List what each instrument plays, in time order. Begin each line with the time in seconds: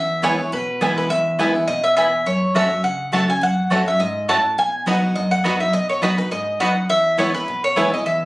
Already playing: steel-string acoustic guitar E2, mandolin E5
0.22 steel-string acoustic guitar E3 G#3 B3 E4, mandolin B3 E4 B4 C#5 G#5, five-string banjo B3 E4
0.39 steel-string acoustic guitar B3 E4
0.52 steel-string acoustic guitar B2, mandolin B4
0.81 steel-string acoustic guitar E3 G#3 B3 E4, mandolin B3 E4 B4 G#5, five-string banjo B3 E4
0.98 mandolin B4
1.10 steel-string acoustic guitar E2, mandolin E5
1.39 steel-string acoustic guitar E3 G#3 B3 E4, mandolin B3 E4 B4 G#5, five-string banjo B3 E4
1.55 steel-string acoustic guitar B3 E4
1.68 steel-string acoustic guitar B2, mandolin D#5
1.84 mandolin E5
1.96 steel-string acoustic guitar E2, mandolin B3 E4 B4 E5 G#5, five-string banjo B3 E4
2.26 steel-string acoustic guitar F#2, mandolin C#5
2.54 steel-string acoustic guitar F#3 A3 C#4 F#4, mandolin A3 F#4 C#5 E5 F#5, five-string banjo A3 C#4 F#4
2.71 steel-string acoustic guitar C#4 F#4
2.84 steel-string acoustic guitar C#3, mandolin F#5
3.12 steel-string acoustic guitar F#3 A3 C#4 F#4, mandolin A3 F#4 C#5 F#5 A5, five-string banjo A3 C#4 F#4
3.28 steel-string acoustic guitar C#4 F#4, mandolin G#5
3.41 steel-string acoustic guitar F#2, mandolin F#5
3.70 steel-string acoustic guitar F#3 A3 C#4 F#4, mandolin A3 F#4 C#5 F#5, five-string banjo A3 C#4 F#4
3.86 steel-string acoustic guitar C#4 F#4, mandolin E5
4.00 steel-string acoustic guitar G#2, mandolin D#5
4.28 steel-string acoustic guitar A2, mandolin A3 F#4 C#5 F#5 A5, five-string banjo A3 C#4 F#4
4.58 steel-string acoustic guitar B2, mandolin G#5
4.86 steel-string acoustic guitar F#3 B3 D#4 F#4, mandolin B3 F#4 D#5 F#5 B5, five-string banjo B3 D#4 F#4
5.15 steel-string acoustic guitar F#2, mandolin D#5
5.31 mandolin F#5
5.44 steel-string acoustic guitar F#3 B3 D#4 F#4, mandolin B3 F#4 D#5 B5, five-string banjo B3 D#4 F#4
5.60 steel-string acoustic guitar D#4 F#4, mandolin E5
5.73 steel-string acoustic guitar B2, mandolin D#5
5.89 mandolin C#5
6.02 steel-string acoustic guitar F#3 B3 D#4 F#4, mandolin B3 F#4 B4 D#5 B5, five-string banjo B3 D#4 F#4
6.18 steel-string acoustic guitar D#4 F#4, mandolin B4
6.31 steel-string acoustic guitar G#2, mandolin D#5
6.60 steel-string acoustic guitar F#2, mandolin B3 F#4 D#5 F#5 B5, five-string banjo B3 D#4 F#4
6.89 steel-string acoustic guitar E2, mandolin E5
7.18 steel-string acoustic guitar E3 G#3 B3 E4, mandolin B3 E4 B4 C#5 G#5, five-string banjo B3 E4
7.34 steel-string acoustic guitar B3 E4, mandolin B4
7.48 steel-string acoustic guitar B2
7.64 mandolin C#5
7.76 steel-string acoustic guitar E3 G#3 B3 E4, mandolin B3 E4 B4 G#5, five-string banjo B3 E4
7.92 steel-string acoustic guitar B3 E4, mandolin D#5
8.06 steel-string acoustic guitar E2, mandolin E5